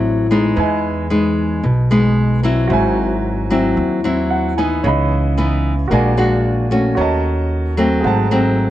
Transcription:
0.00 0.53 A1 medium
0.00 0.54 A2 medium
0.00 0.26 F#3 medium
0.00 0.26 C4 medium
0.00 0.26 E4 medium
0.00 0.51 E4 medium
0.00 0.52 C5 medium
0.00 0.53 D5 medium
0.00 0.54 F#5 medium
0.30 1.06 G#3 medium
0.30 1.06 B3 medium
0.30 1.07 D#4 medium
0.56 1.59 E2 medium
0.56 1.60 E3 medium
0.56 2.65 B4 soft
0.56 2.66 D#5 medium
0.56 2.67 G#5 medium
1.10 1.63 G#3 medium
1.10 1.63 B3 medium
1.10 1.64 D#4 medium
1.64 2.66 B1 medium
1.64 2.67 B2 medium
1.91 2.40 G#3 medium
1.91 2.40 B3 medium
1.91 2.40 D#4 medium
2.43 3.46 F#3 medium
2.43 3.46 C4 medium
2.43 3.46 E4 medium
2.67 3.73 G#1 medium
2.67 3.74 G#2 medium
2.67 4.78 F#4 medium
2.67 4.79 C5 medium
2.67 4.80 E5 medium
2.73 4.56 G#5 medium
3.51 3.99 F#3 medium
3.51 4.00 C4 medium
3.51 4.00 E4 medium
3.77 4.80 D#2 medium
4.04 4.53 F#3 medium
4.04 4.53 C4 medium
4.04 4.53 E4 medium
4.30 4.55 F#5 medium
4.58 5.33 E3 medium
4.58 5.33 B3 medium
4.58 5.33 D#4 medium
4.58 4.82 G#5 soft
4.83 5.86 C#2 medium
4.83 5.88 C#3 medium
4.83 5.88 C#5 medium
4.83 5.89 D#5 medium
4.83 5.90 B5 medium
5.37 5.73 E3 medium
5.37 5.73 B3 medium
5.37 5.73 D#4 medium
5.88 6.93 A#1 medium
5.88 6.95 A#2 medium
5.88 6.13 G#3 medium
5.88 6.13 D4 medium
5.88 6.93 F#4 medium
5.88 6.95 A#4 soft
5.92 6.13 F#4 medium
5.92 6.96 D5 medium
5.92 6.97 G#5 medium
6.18 6.66 G#3 medium
6.18 6.67 D4 medium
6.18 6.67 F#4 medium
6.71 7.73 A3 soft
6.71 7.73 C#4 medium
6.71 7.74 F#4 medium
6.95 8.00 D#2 medium
6.95 7.77 D#3 medium
6.95 8.01 F#4 medium
6.95 8.02 C#5 medium
6.99 8.03 D#5 medium
6.99 8.04 A5 medium
7.77 8.26 F#3 medium
7.77 8.27 A3 medium
7.77 8.27 C4 medium
8.01 8.70 G#1 medium
8.01 8.70 G#2 soft
8.01 8.70 G#4 medium
8.01 8.70 C5 soft
8.01 8.70 F#5 medium
8.07 8.70 A5 medium
8.31 8.70 F#3 medium
8.31 8.70 A3 medium
8.31 8.70 C4 medium

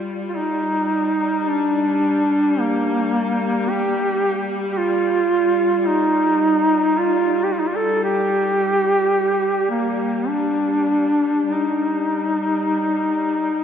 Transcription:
0.00 11.47 G3 soft
0.29 0.39 F4 medium
0.37 1.50 D#4 medium
1.49 2.61 D4 medium
2.60 3.71 A#3 medium
3.69 4.52 G4 medium
4.72 4.79 G4 medium
4.77 5.80 F4 loud
5.80 5.89 F4 medium
5.87 6.99 D#4 loud
6.98 7.45 F4 medium
7.44 7.54 G4 medium
7.53 7.61 F4 medium
7.59 7.70 D#4 medium
7.69 7.78 F4 medium
7.76 8.03 A4 medium
8.04 9.66 G4 loud
9.70 10.30 A#3 medium
10.28 11.53 D4 medium
11.49 13.64 G3 soft
11.49 13.64 D#4 medium

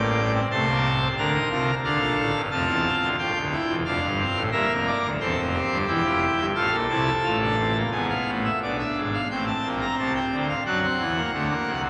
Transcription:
0.00 0.41 A1 medium
0.00 0.40 A2 medium
0.00 0.20 A#3 medium
0.00 0.40 D5 medium
0.00 0.32 G5 medium
0.34 0.48 C4 medium
0.50 1.08 C2 medium
0.50 1.08 C3 medium
0.50 0.65 A3 medium
0.50 1.08 C5 medium
0.50 1.08 A5 medium
0.66 0.87 A#3 medium
1.01 1.15 C4 medium
1.17 1.38 D2 medium
1.17 1.38 D3 medium
1.17 1.32 D4 medium
1.17 1.75 A#4 medium
1.17 1.75 A#5 medium
1.34 1.48 D#4 medium
1.50 1.71 C2 medium
1.50 1.71 C3 medium
1.50 1.71 F4 medium
1.84 1.98 D2 medium
1.84 1.98 D3 medium
1.84 2.41 D4 loud
1.84 2.41 A4 medium
1.84 2.41 F5 medium
2.00 2.15 A#1 medium
2.00 2.15 A#2 medium
2.17 2.31 A1 medium
2.17 2.31 A2 medium
2.33 2.48 G1 medium
2.33 2.48 G2 medium
2.51 2.65 F1 medium
2.51 2.65 F2 medium
2.51 3.08 C4 medium
2.51 3.16 F4 medium
2.51 3.08 A5 medium
2.66 2.88 E1 medium
2.66 2.88 E2 medium
3.01 3.16 D1 medium
3.01 3.15 D2 medium
3.18 3.32 C1 medium
3.18 3.32 C2 medium
3.18 3.39 F4 medium
3.18 3.76 G5 medium
3.35 3.55 D1 medium
3.35 3.56 D2 medium
3.52 3.72 E4 medium
3.69 3.83 E1 medium
3.69 3.83 E2 medium
3.85 3.99 F1 medium
3.85 3.99 F2 medium
3.85 4.06 D4 medium
3.85 4.42 F5 medium
4.02 4.23 G1 medium
4.02 4.23 G2 medium
4.19 4.40 C4 medium
4.35 4.50 A1 medium
4.35 4.49 A2 medium
4.51 4.66 G1 medium
4.51 4.66 G2 medium
4.51 5.10 A#3 medium
4.51 5.10 A#4 medium
4.51 4.73 E5 medium
4.69 4.90 F1 medium
4.69 4.90 F2 medium
4.86 5.07 D5 medium
5.03 5.17 D1 medium
5.03 5.17 D2 medium
5.20 5.34 E1 medium
5.20 5.34 E2 medium
5.20 5.78 C4 medium
5.20 5.40 A4 medium
5.20 5.78 C5 medium
5.37 5.57 F1 medium
5.37 5.57 F2 medium
5.53 6.40 G4 medium
5.70 5.84 G1 medium
5.70 5.85 G2 medium
5.87 6.02 E1 loud
5.87 6.01 E2 loud
5.87 6.45 E4 medium
5.87 6.45 G5 medium
6.03 6.25 F1 loud
6.03 6.24 F2 loud
6.38 6.52 G1 medium
6.38 6.52 G2 medium
6.55 6.70 A1 medium
6.55 6.69 A2 medium
6.55 6.76 F4 medium
6.55 7.73 A4 medium
6.55 6.76 F5 medium
6.72 6.87 A#1 medium
6.72 6.87 A#2 medium
6.89 7.10 C2 medium
6.89 7.10 C3 medium
6.89 7.10 E4 medium
6.89 7.77 A5 medium
7.24 7.83 A1 medium
7.24 7.82 A2 loud
7.24 7.38 F4 medium
7.41 7.55 D4 medium
7.58 7.73 C4 medium
7.75 7.90 A#3 medium
7.92 8.13 G#1 medium
7.92 8.13 G#2 medium
7.92 8.51 B3 medium
7.92 8.06 G#5 medium
8.09 8.31 F5 medium
8.27 8.48 A1 medium
8.27 8.48 A2 medium
8.45 8.59 E5 medium
8.62 8.83 B1 medium
8.62 8.83 B2 medium
8.62 9.21 D4 medium
8.62 8.77 D5 medium
8.79 9.00 E5 medium
8.96 9.17 G#1 medium
8.96 9.17 G#2 medium
9.14 9.28 F5 medium
9.30 9.51 A1 medium
9.30 9.51 A2 medium
9.30 10.47 C4 medium
9.30 9.45 G5 medium
9.47 9.68 A5 medium
9.64 9.85 A#1 medium
9.64 9.85 A#2 medium
9.81 9.96 A#5 medium
9.99 10.19 C2 medium
9.99 10.19 C3 medium
9.99 10.13 A5 medium
10.15 10.36 G5 medium
10.32 10.53 D2 medium
10.32 10.53 D3 medium
10.49 10.63 F5 medium
10.65 10.87 F#2 medium
10.65 10.86 F#3 medium
10.65 10.80 D4 medium
10.65 11.81 F#5 medium
10.83 11.04 C4 medium
11.00 11.21 E2 medium
11.00 11.20 E3 medium
11.16 11.31 A#3 medium
11.33 11.54 D2 medium
11.33 11.54 D3 medium
11.33 11.47 A3 medium
11.50 11.71 A#3 medium
11.66 11.87 C2 medium
11.66 11.87 C3 medium
11.83 11.90 C4 medium

